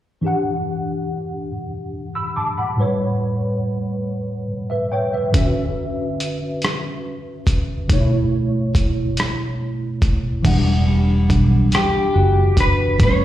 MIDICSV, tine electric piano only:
0, 0, Header, 1, 2, 480
1, 0, Start_track
1, 0, Tempo, 851064
1, 131, Time_signature, 6, 3, 24, 8
1, 7472, End_track
2, 0, Start_track
2, 0, Title_t, "Tine electric piano"
2, 0, Program_c, 0, 4
2, 120, Note_on_c, 0, 52, 51
2, 128, Note_on_c, 0, 62, 48
2, 139, Note_on_c, 0, 67, 48
2, 150, Note_on_c, 0, 78, 60
2, 245, Control_c, 0, 64, 127
2, 847, Note_off_c, 0, 78, 0
2, 1214, Note_on_c, 0, 88, 48
2, 1216, Note_on_c, 0, 83, 44
2, 1327, Note_off_c, 0, 88, 0
2, 1328, Note_off_c, 0, 83, 0
2, 1333, Note_on_c, 0, 86, 54
2, 1335, Note_on_c, 0, 81, 48
2, 1446, Note_off_c, 0, 86, 0
2, 1447, Note_off_c, 0, 81, 0
2, 1453, Note_on_c, 0, 83, 49
2, 1456, Note_on_c, 0, 78, 39
2, 1543, Note_off_c, 0, 52, 0
2, 1547, Note_off_c, 0, 62, 0
2, 1553, Note_off_c, 0, 67, 0
2, 1559, Note_on_c, 0, 45, 55
2, 1569, Note_on_c, 0, 55, 49
2, 1578, Note_on_c, 0, 71, 50
2, 1579, Control_c, 0, 64, 0
2, 1585, Note_on_c, 0, 73, 61
2, 1663, Control_c, 0, 64, 127
2, 1681, Note_off_c, 0, 83, 0
2, 1682, Note_off_c, 0, 78, 0
2, 2516, Note_off_c, 0, 71, 0
2, 2519, Note_off_c, 0, 73, 0
2, 2650, Note_on_c, 0, 76, 49
2, 2655, Note_on_c, 0, 71, 43
2, 2765, Note_off_c, 0, 76, 0
2, 2767, Note_off_c, 0, 71, 0
2, 2773, Note_on_c, 0, 79, 57
2, 2778, Note_on_c, 0, 73, 48
2, 2886, Note_off_c, 0, 79, 0
2, 2889, Note_off_c, 0, 73, 0
2, 2894, Note_on_c, 0, 76, 49
2, 2898, Note_on_c, 0, 71, 42
2, 2983, Note_off_c, 0, 45, 0
2, 2988, Note_off_c, 0, 55, 0
2, 3001, Note_on_c, 0, 50, 59
2, 3011, Note_on_c, 0, 61, 53
2, 3019, Control_c, 0, 64, 0
2, 3020, Note_on_c, 0, 66, 49
2, 3022, Note_off_c, 0, 76, 0
2, 3029, Note_on_c, 0, 76, 62
2, 3123, Note_off_c, 0, 71, 0
2, 3129, Control_c, 0, 64, 127
2, 4424, Note_off_c, 0, 50, 0
2, 4429, Note_off_c, 0, 61, 0
2, 4433, Note_off_c, 0, 66, 0
2, 4438, Note_off_c, 0, 76, 0
2, 4444, Note_on_c, 0, 47, 60
2, 4452, Note_on_c, 0, 57, 53
2, 4458, Control_c, 0, 64, 0
2, 4462, Note_on_c, 0, 63, 41
2, 4471, Note_on_c, 0, 73, 61
2, 4493, Note_off_c, 0, 63, 0
2, 4499, Note_on_c, 0, 64, 56
2, 4560, Control_c, 0, 64, 127
2, 5865, Note_off_c, 0, 47, 0
2, 5869, Note_off_c, 0, 57, 0
2, 5879, Note_off_c, 0, 73, 0
2, 5880, Note_on_c, 0, 52, 60
2, 5889, Note_on_c, 0, 62, 55
2, 5893, Note_off_c, 0, 64, 0
2, 5898, Control_c, 0, 64, 0
2, 5900, Note_on_c, 0, 78, 53
2, 5908, Note_on_c, 0, 55, 70
2, 6011, Control_c, 0, 64, 127
2, 7303, Note_off_c, 0, 52, 0
2, 7308, Note_off_c, 0, 62, 0
2, 7313, Note_off_c, 0, 78, 0
2, 7317, Note_off_c, 0, 55, 0
2, 7320, Note_on_c, 0, 45, 53
2, 7329, Note_on_c, 0, 55, 48
2, 7337, Note_on_c, 0, 59, 38
2, 7338, Control_c, 0, 64, 0
2, 7347, Note_on_c, 0, 71, 57
2, 7371, Note_off_c, 0, 59, 0
2, 7376, Note_on_c, 0, 61, 46
2, 7434, Control_c, 0, 64, 127
2, 7472, Note_off_c, 0, 45, 0
2, 7472, Note_off_c, 0, 55, 0
2, 7472, Note_off_c, 0, 61, 0
2, 7472, Note_off_c, 0, 71, 0
2, 7472, End_track
0, 0, End_of_file